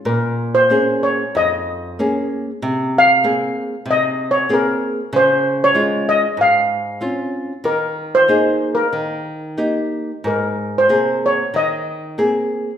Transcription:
<<
  \new Staff \with { instrumentName = "Steel pan" } { \time 4/4 \key aes \major \tempo 4 = 94 bes'8. c''8. des''8 ees''4. r8 | r8 f''4. \tuplet 3/2 { ees''4 des''8 } bes'8. r16 | c''8. des''8. ees''8 f''4. r8 | bes'8. c''4 bes'4. r8. |
bes'8. c''8. des''8 ees''4. r8 | }
  \new Staff \with { instrumentName = "Nylon-string guitar" } { \time 4/4 \key aes \major bes,4 <bes des' aes'>4 f,4 <bes des' aes'>4 | c4 <bes c' aes'>4 c4 <bes c' aes'>4 | des4 <aes des' f'>4 aes,4 <c' des' f'>4 | ees4 <bes ees' aes'>4 ees4 <bes ees' g'>4 |
aes,4 <c bes aes'>4 ees4 <bes c' aes'>4 | }
>>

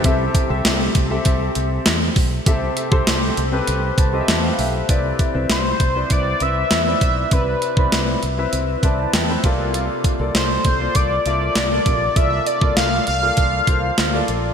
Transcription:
<<
  \new Staff \with { instrumentName = "Analog synth lead" } { \time 4/4 \key c \major \tempo 4 = 99 r1 | r1 | r4 c''4 d''8 e''4. | b'4. r2 r8 |
r4 c''8 c''8 d''8 d''4. | e''8 d''8 f''8 f''2 r8 | }
  \new Staff \with { instrumentName = "Grand piano" } { \time 4/4 \key c \major << { r1 | r2 r8 a''8 g''16 f''16 e''8 | r1 | r2 r8 a''16 a''16 g''8 f''8 |
r1 | r1 | } \\ { <c' g' a' e''>8 r16 <c' g' a' e''>8. r16 <c' g' a' e''>4. r8. | <c' g' a' e''>8 r16 <c' g' a' c''>8. r16 <c' g' a' b'>8. r16 <c' g' a' ees'' e''>8. r8 | <c' e' b' d''>8 r16 <c' e' b' e''>8. r16 <c' e' b' d''>8 r16 <c' e' b' e''>8 r16 <c' e' b' d''>8 r16 | <c' e' b' d''>8 r16 <c' e' b' d''>8. r16 <c' e' b' e''>8 r16 <c' e' b' d''>8 r16 <c' e' b' e''>16 <bes f' a' d''>8~ |
<bes f' a' d''>8 r16 <bes f' a' d''>8. r16 <bes f' a' d''>8 r16 <bes f' a' e''>8 r16 <bes f' a' d''>8 r16 | <bes f' a' d''>8 r16 <bes f' a' d''>8. r16 <bes f' a' d''>8 r16 <bes f' a' c''>8 r16 <bes f' a' d''>8 r16 | } >> }
  \new Staff \with { instrumentName = "Grand piano" } { \clef bass \time 4/4 \key c \major c4. r2 r8 | c4. r2 r8 | c4. r2 r8 | c4. r2 c8~ |
c4 r2 r8 c8~ | c4 r2. | }
  \new Staff \with { instrumentName = "Fretless electric bass" } { \clef bass \time 4/4 \key c \major c,8 r16 c,16 c,8 c,8 c,8 c,8 e,8 b,,8 | c,8 r16 c,16 c,8 c,8 c,8 c,8 e,8 b,,8 | c,8 r16 c,16 c,8 c,8 c,8 c,8 e,8 b,,8 | c,8 r16 c,16 c,8 c,8 c,8 c,8 e,8 c,8~ |
c,8 r16 c,16 c,8 c,8 c,8 c,8 c,8 bes,,8 | c,8 r16 c,16 c,8 c,8 c,8 c,8 d,8 bes,,8 | }
  \new DrumStaff \with { instrumentName = "Drums" } \drummode { \time 4/4 <hh bd>8 <hh bd>8 <hh sn>8 <hh bd>8 <hh bd>8 hh8 <hh sn>8 <hho bd>8 | <hh bd>8 hh16 bd16 <hh sn>8 hh8 hh8 <hh bd>8 <hh sn>8 hho8 | <hh bd>8 <hh bd>8 <hh sn>8 <hh bd>8 <hh bd>8 hh8 <hh sn>8 <hh bd>8 | <hh bd>8 hh16 bd16 <hh sn>8 hh8 hh8 <hh bd>8 <hh sn>8 <hh bd>8 |
hh8 <hh bd>8 <hh sn>8 <hh bd>8 <hh bd>8 hh8 <hh sn>8 <hh bd>8 | <hh bd>8 hh16 bd16 <hh sn>8 hh8 <hh bd>8 <hh bd>8 <hh sn>8 hh8 | }
>>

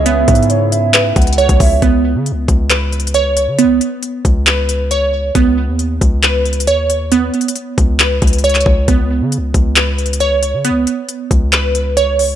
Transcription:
<<
  \new Staff \with { instrumentName = "Soft synth lead" } { \time 4/4 \key b \mixolydian \tempo 4 = 136 e''4 cis''8 e''4 fis''4 e''8 | r1 | r1 | r1 |
r1 | r1 | r1 | }
  \new Staff \with { instrumentName = "Synth pluck" } { \time 4/4 \key b \mixolydian <b b' cis''>2 b'4 cis''4 | b2 b'4 cis''4 | b2 b'4 cis''4 | b2 b'4 cis''4 |
b2 b'4 cis''4 | b2 b'4 cis''4 | b2 b'4 cis''4 | }
  \new Staff \with { instrumentName = "Ambient pad" } { \time 4/4 \key b \mixolydian <cis b e' gis'>1 | r1 | r1 | r1 |
r1 | r1 | r1 | }
  \new Staff \with { instrumentName = "Grand piano" } { \time 4/4 \key b \mixolydian <cis b e'>1 | r1 | r1 | r1 |
r1 | r1 | r1 | }
  \new Staff \with { instrumentName = "808-style bass" } { \clef bass \time 4/4 \key b \mixolydian cis,8 gis,2 cis,8. cis,16 cis,8 | cis,8. cis16. cis,16. cis,2~ cis,16 cis16~ | cis32 cis,16. r4 cis,2~ cis,8 | cis,8. dis,8. cis,4. dis,4~ |
dis,8 r4 cis,4 cis,4 cis,8 | cis,8. cis16. cis,16. cis,2~ cis,16 cis16~ | cis32 cis,16. r4 cis,2~ cis,8 | }
  \new DrumStaff \with { instrumentName = "Drums" } \drummode { \time 4/4 \tuplet 3/2 { hh16 r16 r16 <hh bd>16 hh16 hh16 } hh8 hh8 <hc hh>8 <hh bd>32 hh32 hh32 hh32 hh16 <hh bd>16 <hho bd>8 | <hh bd>4 hh8 <hh bd>8 \tuplet 3/2 { <hc hh>16 r16 r16 hh16 hh16 hh16 } hh8 hh8 | hh8 hh8 hh8 <hh bd>8 <hc hh>8 hh8 hh4 | <hh bd>4 hh8 <hh bd>8 \tuplet 3/2 { <hc hh>16 r16 r16 hh16 hh16 hh16 } hh8 hh8 |
\tuplet 3/2 { hh16 r16 r16 hh16 hh16 hh16 } hh8 <hh bd>8 <hc hh>8 <hh bd>32 hh32 hh32 hh32 hh32 hh32 <hc hh>32 hh32 bd8 | <hh bd>4 hh8 <hh bd>8 \tuplet 3/2 { <hc hh>16 r16 r16 hh16 hh16 hh16 } hh8 hh8 | hh8 hh8 hh8 <hh bd>8 <hc hh>8 hh8 hh8 hho8 | }
>>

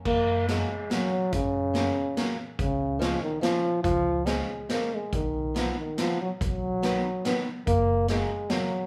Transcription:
<<
  \new Staff \with { instrumentName = "Steel-string acoustic guitar" } { \clef bass \time 3/4 \key fis \major \tempo 4 = 142 r4 <fis ais cis'>8 r8 <fis ais cis'>8 r8 | r4 <fis ais cis'>8 r8 <fis ais cis'>8 r8 | r4 <eis gis cis'>8 r8 <eis gis cis'>8 r8 | r4 <eis gis cis'>8 r8 <eis gis cis'>8 r8 |
r4 <dis fis b>8 r8 <dis fis b>8 r8 | r4 <dis fis b>8 r8 <dis fis b>8 r8 | r4 <cis fis ais>8 r8 <cis fis ais>8 r8 | }
  \new Staff \with { instrumentName = "Euphonium" } { \clef bass \time 3/4 \key fis \major ais4 gis4 fis4 | cis2~ cis8 r8 | cis4 eis8 dis8 eis4 | eis4 gis4 ais8 gis8 |
dis4 eis8 dis8 eis8 fis8 | fis2~ fis8 r8 | ais4 gis4 fis4 | }
  \new Staff \with { instrumentName = "Upright bass" } { \clef bass \time 3/4 \key fis \major fis,2 r4 | fis,2 r4 | cis,2 r4 | cis,2 r4 |
b,,2 r4 | b,,2 r4 | fis,,2 r4 | }
  \new DrumStaff \with { instrumentName = "Drums" } \drummode { \time 3/4 <cymc bd>4 <hh sn>4 <hh sn>4 | <hh bd>4 <hh sn>4 <hh sn>4 | <hh bd>4 <hh sn>4 <hh sn>4 | <hh bd>4 <hh sn>4 <hh sn>4 |
<hh bd>4 <hh sn>4 <hh sn>4 | <hh bd>4 <hh sn>4 <hh sn>4 | <hh bd>4 <hh sn>4 <hh sn>4 | }
>>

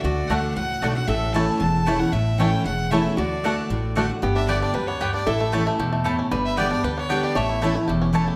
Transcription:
<<
  \new Staff \with { instrumentName = "Fiddle" } { \time 4/4 \key a \mixolydian \tempo 4 = 230 d''4 fis''4 fis''4. fis''8 | e''4 a''4 a''4. fis''8 | e''4 g''4 fis''4 e''4 | d''2. r4 |
r8 e''8 d''8 d''8 b'8 cis''4 d''8 | e''4. r2 r8 | r8 e''8 d''8 d''8 b'8 cis''4 d''8 | e''4. r2 r8 | }
  \new Staff \with { instrumentName = "Mandolin" } { \time 4/4 \key a \mixolydian r4 <a fis' d'' fis''>8 r4. <a fis' d'' fis''>8 r8 | r4 <a e' cis'' a''>8 r4. <a e' cis'' a''>8 r8 | r4 <a e' cis'' a''>8 r4. <a e' cis'' a''>8 r8 | r4 <a fis' d'' fis''>8 r4. <a fis' d'' fis''>8 r8 |
r4 <b g' d'' g''>8 r4. <b g' d'' g''>8 r8 | r4 <a e' cis'' a''>8 r4. <a e' cis'' a''>8 r8 | r4 <b g' d'' g''>8 r4. <b g' d'' g''>8 r8 | r4 <a e' cis'' a''>8 r4. <a e' cis'' a''>8 r8 | }
  \new Staff \with { instrumentName = "Resonator guitar played with a steel bar" } { \time 4/4 \key a \mixolydian fis'1 | a'1~ | a'1 | fis'2.~ fis'8 r8 |
g'1 | a'1 | b'1 | cis''2.~ cis''8 r8 | }
  \new Staff \with { instrumentName = "Five-string banjo" } { \time 4/4 \key a \mixolydian r4 <a d'>8 r4. <a d'>8 r8 | r4 <a cis' e'>8 r4. <a cis' e'>8 r8 | r4 <a cis' e'>8 r4. <a cis' e'>8 r8 | r4 <a d'>8 r4. <a d'>8 r8 |
b8 d'8 g'8 d'8 g8 b8 g'8 d'8 | e'8 a8 g'8 a8 g'8 a8 g'8 cis'8 | g4 g8 d'8 g'8 b8 d'8 g'8 | a8 e'8 a8 e'8 g'8 cis'8 e'8 g'8 | }
  \new Staff \with { instrumentName = "Steel-string acoustic guitar" } { \time 4/4 \key a \mixolydian << { r4 <d a d' fis'>4 r4 <d a d' fis'>8 <d' fis'>8 | r4 <e a cis' e'>4 r4 <e a cis' e'>8 <cis' e'>8 | r4 <e a cis' e'>4 r4 <e a cis' e'>4 | r4 <d a d' fis'>4 r4 <d a d' fis'>8 <d' fis'>8 |
r4 <d g b g'>4 r2 | r4 <e a cis' e'>4 r2 | r4 <d g b g'>8 <b g'>8 r4 <d g b g'>4 | r4 <e a cis' e'>8 <cis' e'>8 r4 <e a cis' e'>4 | } \\ { d2 a,2 | a,2 e,2 | a,2 e,2 | d2 a,2 |
g,2 fis,4 g,4 | a,2 b,4 a,4 | g,2 d2 | a,2 e,2 | } >> }
  \new Staff \with { instrumentName = "Upright bass" } { \clef bass \time 4/4 \key a \mixolydian d,4 d,4 cis,4 b,,4 | a,,2 e,,2 | a,,2 e,,2 | d,2 a,,2 |
g,,2 d,2 | a,,2 e,2 | g,,2 d,2 | a,,2 e,,2 | }
>>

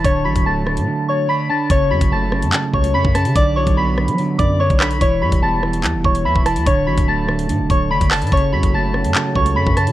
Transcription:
<<
  \new Staff \with { instrumentName = "Synth bell" } { \time 4/4 \key fis \phrygian \tempo 4 = 145 <cis'' cis'''>8 <b'' b'''>8 <a'' a'''>4. <cis'' cis'''>8 <b'' b'''>8 <a'' a'''>8 | <cis'' cis'''>8 <b'' b'''>8 <a'' a'''>4. <cis'' cis'''>8 <b'' b'''>8 <a'' a'''>8 | <d'' d'''>8 <cis'' cis'''>8 <b'' b'''>4. <d'' d'''>8 <cis'' cis'''>8 <b'' b'''>8 | <cis'' cis'''>8 <b'' b'''>8 <a'' a'''>4. <cis'' cis'''>8 <b'' b'''>8 <a'' a'''>8 |
<cis'' cis'''>8 <b'' b'''>8 <a'' a'''>4. <cis'' cis'''>8 <b'' b'''>8 <a'' a'''>8 | <cis'' cis'''>8 <b'' b'''>8 <a'' a'''>4. <cis'' cis'''>8 <b'' b'''>8 <a'' a'''>8 | }
  \new Staff \with { instrumentName = "French horn section" } { \time 4/4 \key fis \phrygian r1 | r1 | r1 | r1 |
r1 | <fis fis' a' cis''>1 | }
  \new Staff \with { instrumentName = "Clean electric guitar" } { \clef bass \time 4/4 \key fis \phrygian d8 fis8 a8 d8 d4 d'8 d8 | cis8 fis8 a8 cis8 cis4 cis'8 cis8 | d8 fis8 b8 d8 d4 d'8 d8 | e8 g8 b8 e8 e4 e'8 e8 |
d8 fis8 a8 d8 d4 d'8 d8 | cis8 fis8 a8 cis8 cis4 cis'8 cis8 | }
  \new Staff \with { instrumentName = "808-style bass" } { \clef bass \time 4/4 \key fis \phrygian d,,8 a,,16 d,,4 a,16 r2 | fis,,8 fis,16 fis,,16 fis,,8. fis,16 r8 cis,8 fis,16 fis,8 cis16 | b,,8. b,,4 fis8. fis,8. b,,8. | e,,8 g,16 e,,16 e,,4 e,16 e,,16 e,,8 e,16 e,,8 e,16 |
d,,8 a,,16 d,,4~ d,,16 a,16 d,,16 d,,8 fis,,16 fis,,8 a,16 | fis,,8 fis,16 fis,,16 fis,,8. fis,16 r8 cis,8 fis,16 fis,8 cis16 | }
  \new DrumStaff \with { instrumentName = "Drums" } \drummode { \time 4/4 <hh bd>8. <hh bd>16 r8 ss16 hh16 r4 r4 | <hh bd>8. <hh bd>16 r8 ss16 hh16 <hc hh>8 bd16 hh16 r16 bd16 <hh ss>16 hh16 | <hh bd>8. <hh bd>16 r8 ss16 hh16 hh8 <hh bd>8 r16 <hh bd>16 <hc ss>16 hh16 | <hh bd>8. <hh bd>16 r8 ss16 hh16 <hc hh>8 bd16 hh16 r16 bd16 <hh ss>16 hh16 |
<hh bd>8. <hh bd>16 r8 ss16 hh16 hh8 <hh bd>8 r16 <hh bd>16 <hc hho ss>16 hh32 hh32 | <hh bd>32 hh8 r32 <hh bd>16 r8 ss16 hh16 <hc hh>8 bd16 hh16 r16 bd16 <hh ss>16 hh16 | }
>>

